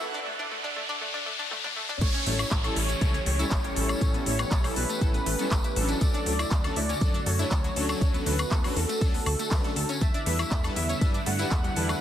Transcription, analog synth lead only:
2.01 2.67 C#5 loud
2.77 3.22 C#5 medium
3.27 4.17 C#5 loud
4.27 4.72 C#5 medium
4.76 5.92 B4 loud
6.02 6.67 D5 loud
6.76 7.28 D5 medium
7.26 8.17 C#5 loud
8.26 8.78 B4 loud
8.77 9.92 A4 loud
10.01 10.67 E5 loud
10.77 11.22 E5 medium
11.27 12.01 F#5 loud

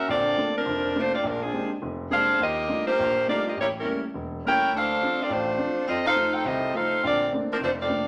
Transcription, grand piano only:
0.08 0.33 A#1 medium
0.08 0.33 D3 medium
0.37 0.56 A3 soft
0.37 0.56 A#3 soft
0.37 0.56 C4 soft
0.37 0.56 D4 medium
0.65 0.91 F1 medium
0.96 1.14 A3 medium
0.96 1.14 A#3 soft
0.96 1.14 C4 soft
0.96 1.14 D4 medium
1.24 1.49 A#1 medium
1.53 1.72 G#3 medium
1.53 1.72 A#3 soft
1.53 1.72 C4 soft
1.53 1.72 D4 soft
1.53 1.72 G4 medium
1.82 2.07 F1 medium
2.10 2.29 G#3 soft
2.10 2.29 A#3 soft
2.10 2.29 C4 soft
2.10 2.29 D4 soft
2.10 2.29 G4 medium
2.39 2.64 D#2 medium
2.68 2.87 G3 medium
2.68 2.87 A3 soft
2.68 2.87 D4 soft
2.68 2.87 D#4 medium
2.68 2.88 F4 medium
2.99 3.23 A#1 medium
3.28 3.46 G3 medium
3.28 3.46 A3 soft
3.28 3.46 D4 soft
3.28 3.46 D#4 soft
3.28 3.46 F4 medium
3.57 3.81 A1 medium
3.85 4.03 G3 soft
3.85 4.03 A3 soft
3.85 4.03 A#3 soft
3.85 4.04 C#4 medium
4.14 4.39 E1 medium
4.45 4.62 G3 soft
4.45 4.62 A3 soft
4.45 4.63 A#3 soft
4.45 4.63 C#4 medium
4.72 4.97 D2 medium
5.02 5.20 F3 soft
5.02 5.20 C4 soft
5.02 5.20 D4 medium
5.29 5.54 A1 medium
5.29 5.54 A2 medium
5.58 5.77 F3 soft
5.58 5.77 C4 soft
5.58 5.77 D4 medium
5.88 6.13 F2 medium
6.16 6.35 F3 soft
6.16 6.35 A3 soft
6.16 6.35 D#4 medium
6.45 6.70 C2 medium
6.45 6.70 C3 medium
6.74 6.92 F3 medium
6.74 6.93 A3 soft
6.74 6.93 D#4 medium
7.03 7.28 A#1 medium
7.03 7.28 D3 medium
7.33 7.51 A3 medium
7.33 7.51 A#3 soft
7.33 7.51 C4 soft
7.33 7.52 D4 medium
7.61 7.85 F1 medium
7.89 8.08 A3 medium
7.89 8.08 A#3 soft
7.89 8.08 C4 soft
7.89 8.08 D4 medium

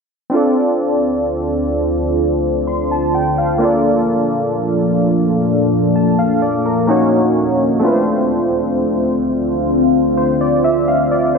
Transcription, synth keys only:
0.30 3.55 C4 medium
0.30 3.56 D4 medium
0.30 3.57 F4 medium
0.35 3.58 A4 medium
0.35 3.59 D5 medium
2.67 2.89 C6 medium
2.91 3.13 A5 medium
3.15 3.36 G5 medium
3.38 3.82 F5 medium
3.58 6.84 A#3 medium
3.58 6.84 D4 medium
3.58 6.85 F4 medium
3.63 5.92 A4 medium
3.63 5.93 D5 medium
5.96 6.18 A5 medium
6.19 6.41 F5 medium
6.42 6.64 D5 medium
6.66 7.10 A#4 medium
6.87 7.82 A#3 medium
6.87 7.82 C#4 medium
6.87 7.83 D#4 medium
6.87 7.83 F#4 medium
6.87 7.84 C#5 medium
7.79 11.38 A3 medium
7.79 11.38 C4 medium
7.79 11.38 D4 medium
7.84 11.38 F4 medium
7.84 7.91 B4 medium
7.93 10.16 C5 medium
10.17 10.39 C5 medium
10.41 10.63 D5 medium
10.64 10.86 E5 medium
10.88 11.10 F5 medium
11.11 11.33 D5 medium
11.35 11.38 C5 medium

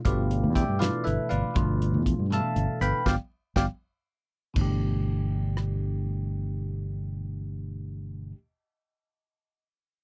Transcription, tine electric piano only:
0.05 0.74 B2 medium
0.05 0.75 F3 medium
0.05 0.75 A3 medium
0.05 0.75 D4 medium
0.05 0.52 F4 medium
0.05 0.54 G4 medium
0.05 0.52 B4 medium
0.05 0.52 D5 medium
0.05 0.52 F5 medium
0.55 0.80 G4 medium
0.55 0.79 D5 medium
0.55 0.80 E5 medium
0.55 0.80 G5 medium
0.79 1.49 B2 medium
0.79 1.49 E3 medium
0.79 1.50 A3 medium
0.79 1.50 D4 medium
0.79 1.03 E4 medium
0.79 1.04 F4 medium
0.79 1.04 B4 medium
0.79 1.05 D5 medium
0.79 1.04 F5 medium
1.04 1.29 E4 medium
1.04 1.29 A4 medium
1.04 1.29 B4 medium
1.04 1.29 E5 medium
1.29 1.55 F4 medium
1.29 2.02 B4 medium
1.29 2.02 D5 medium
1.29 2.01 F5 medium
1.55 2.24 B2 medium
1.55 2.25 F3 medium
1.55 2.25 A3 medium
1.55 2.25 D4 medium
1.55 2.25 F4 medium
2.30 3.00 B2 medium
2.30 3.00 E3 medium
2.30 3.00 A3 soft
2.30 3.01 D4 medium
2.30 3.01 A4 medium
2.30 2.79 E5 medium
2.30 2.79 F5 medium
2.30 2.79 A5 medium
2.81 3.06 B4 medium
2.81 3.05 F5 medium
2.81 3.05 G5 medium
2.81 3.06 B5 medium
3.06 3.15 F3 medium
3.06 3.14 G3 medium
3.06 3.14 B3 medium
3.06 3.14 D5 medium
3.06 3.14 F5 medium
3.06 3.14 G5 medium
3.56 3.65 F3 medium
3.56 3.65 G3 medium
3.56 3.65 B3 medium
3.56 3.65 D5 medium
3.56 3.65 F5 medium
3.56 3.64 G5 medium
4.54 8.30 B2 medium
4.54 8.32 E3 medium
4.54 8.33 A3 medium
4.59 8.35 D4 medium
4.59 8.37 G4 medium

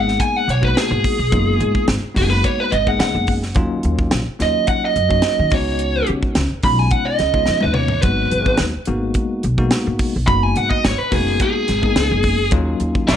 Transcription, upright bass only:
0.00 0.16 G#1 medium
0.48 0.72 B1 medium
0.91 1.02 G#2 medium
1.19 1.30 B1 medium
1.33 1.57 F#1 medium
1.60 1.73 G#2 medium
1.88 2.01 G#1 medium
2.03 muted upright bass stroke soft
2.17 2.41 F#1 medium
2.72 2.96 G#1 medium
3.00 3.13 C#2 medium
3.15 3.57 F#1 medium
3.56 3.80 D#2 medium
3.85 4.09 D#2 medium
4.12 4.25 A#1 medium
4.27 muted upright bass stroke soft
4.40 4.64 D#2 medium
4.96 5.20 F#2 medium
5.39 5.50 D#3 medium
5.52 6.01 C#2 medium
6.09 6.22 C#3 medium
6.37 6.49 C#2 loud
6.53 muted upright bass stroke soft
6.64 6.88 B1 medium
7.20 7.44 C#2 medium
7.48 7.61 F2 medium
7.64 8.05 D#2 medium
8.03 8.28 G#1 medium
8.32 8.56 G#1 medium
8.60 8.73 D#2 medium
8.75 muted upright bass stroke soft
8.88 9.12 G#1 medium
9.44 9.68 B1 medium
9.87 9.98 G#2 medium
10.16 10.27 B1 medium
10.28 10.52 F#1 medium
10.57 10.69 G#2 medium
10.85 10.98 G#1 medium
11.00 muted upright bass stroke soft
11.12 11.37 F#1 medium
11.69 11.93 G#1 medium
11.96 12.09 C#2 medium
12.11 12.54 F#1 medium
12.52 12.77 D#2 medium
12.80 13.05 D#2 medium
13.08 13.16 A#1 medium

